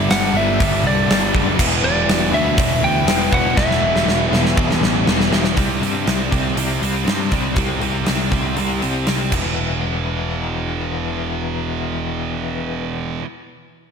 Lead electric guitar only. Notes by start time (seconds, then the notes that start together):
Already playing: E5
0.11 F#5
0.36 E5
0.87 D5
1.84 D5
2.34 E5
2.84 G5
3.34 F#5
3.58 E5
4.70 D5